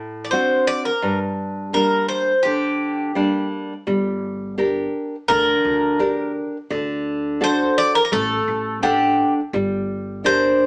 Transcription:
Already playing: A2
0.25 D5
0.31 C4 D4 F#4 C5
0.67 D5
0.85 A#4
1.02 G2
1.73 G3 A#3 D4 A#4
2.08 C5
2.43 D3 G4
3.15 G3 A#3 D4
3.87 G1 G3
4.58 D4 G4 A#4
5.28 D2 D3 A#4
5.64 D2
5.99 D4 G4 A#4
6.70 D2 D3
7.41 D4 F#4 A4 C5
7.78 D5
7.95 A#4
8.05 A#4
8.12 A1 A3 A4
8.48 A1
8.82 D4 G4 A4 F#5
9.53 G1 G3
10.24 D4 G4 A#4 C5

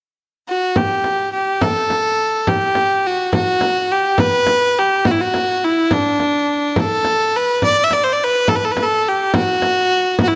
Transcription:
0.49 F#4
0.76 G4, frame drum
1.04 frame drum
1.33 G4
1.61 A4, frame drum
1.90 frame drum
2.47 G4, frame drum
2.75 frame drum
3.07 F#4
3.33 F#4, frame drum
3.61 frame drum
3.92 G4
4.18 B4, frame drum
4.47 frame drum
4.79 G4
5.05 F#4, frame drum
5.11 E4
5.21 F#4
5.34 frame drum
5.64 E4
5.91 D4, frame drum
6.20 frame drum
6.76 A4, frame drum
7.05 frame drum
7.36 B4
7.62 D5, frame drum
7.84 E5
7.91 D5, frame drum
8.04 C5
8.13 D5
8.24 B4
8.48 A4, frame drum
8.56 B4
8.65 A4
8.72 B4
8.77 frame drum
8.83 A4
9.08 G4
9.34 F#4, frame drum
9.62 frame drum
10.19 frame drum
10.23 F#4
10.28 E4

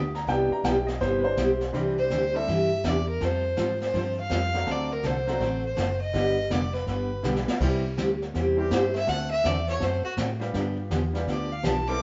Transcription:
Already playing: D2 D#6
0.15 A#5, snare
0.27 C2 B2 C3 E3 G3 B3 D4 E4 G4 G5, brush sweep, kick, snare
0.51 A#5, muted picked electric bass stroke
0.64 B1 C3 G3 B3 E4 G4 G5, kick, snare, hi-hat pedal
0.87 D#5, snare
1.00 G1 C3 G3 B3 E4 G4 C5, brush sweep, kick, snare
1.20 E3 B3 D4 B4
1.24 C5
1.37 B1 C3 G3 B3 E4 G4, kick, snare, hi-hat pedal
1.61 snare
1.73 C2 C3 E3 G3 C4 D4 E4 G4, brush sweep, kick, snare
1.98 C5
2.10 D2 C3 E3 D4 G4, kick, snare, hi-hat pedal
2.33 G3 C4 D4 E4 A4 E5
2.47 G2 C3 E3 D4 G4, brush sweep, kick, snare
2.84 E2 C3 E3 D4 G4 D5, kick, snare, hi-hat pedal
3.09 A#4
3.20 F2 F3 G3 C4 F4 A4 C5, brush sweep, kick, snare
3.57 G#2 F3 G3 C4 F4 A4, kick, snare, hi-hat pedal
3.81 C5, snare
3.94 G2 F3 G3 C4 F4 A4, brush sweep, kick, snare
4.20 F5
4.30 F2 F3 G3 C4 F4 A4, kick, snare, hi-hat pedal
4.53 F#3 A3 C4 D4 F#4, snare
4.67 D2 D3 A3 C4 F#4 A4, brush sweep, kick, snare
4.71 D5
4.92 A#4
5.03 C2 D3 A3 C4 F#4 A4 C5, kick, snare, hi-hat pedal
5.27 F#3 A3 C4 D4 F#4, snare
5.40 A1 D3 A3 C4 F#4 A4, brush sweep, kick, snare
5.65 C5
5.76 F#1 D3 A3 C4 F#4 A4, kick, snare, hi-hat pedal
6.01 D#5
6.13 G1 D3 G3 B3 D4 G4, brush sweep, kick, snare
6.50 F1 D3 G3 B3 D4 G4 D5, kick, snare, hi-hat pedal
6.73 B4, snare
6.87 G1 D3 G3 B3 D4 G4 B4, brush sweep, kick, snare
7.23 B1 D3 G3 B3 D4 G4, snare, hi-hat pedal
7.36 snare
7.48 snare
7.60 C2 C3 E3 G3 C4 E4 G4, brush sweep, kick, snare, crash
7.97 D2 C3 G3 C4 E4 G4, kick, snare, hi-hat pedal
8.22 snare
8.34 E2 C3 G3 C4 E4 G4, brush sweep, kick, snare
8.57 E3 G3 C4 E4 G4
8.71 G2 C3 G3 C4 E4 G4 C5, kick, snare, hi-hat pedal
8.95 E5, snare
9.07 D2 D3 A3 C4 F#4 A4 F#5, brush sweep, kick, snare
9.31 E5
9.44 E2 D3 A3 C4 F#4 A4 D5, kick, snare, hi-hat pedal
9.68 C#5, snare
9.80 F#2 D3 A3 C4 F#4 A4, brush sweep, kick, snare
9.84 C5
10.04 F#4, muted picked electric bass stroke
10.17 A2 D3 A3 C4 F#4 A4, kick, snare, hi-hat pedal
10.40 G3 B3 D4 F4 G4, snare
10.54 G2 D3 F3 B3 D4 G4, brush sweep, kick, snare
10.90 E2 D3 F3 B3 D4 G4, kick, snare, hi-hat pedal
11.13 G3 B3 D4 F4 G4, snare
11.27 D2 D3 F3 B3 D4 G4 D5, brush sweep, kick, snare
11.52 F5
11.63 B1 D3 F3 B3 D4 G4 A5, kick, snare, hi-hat pedal
11.87 G3 B3 C4 E4 A4 D6, snare

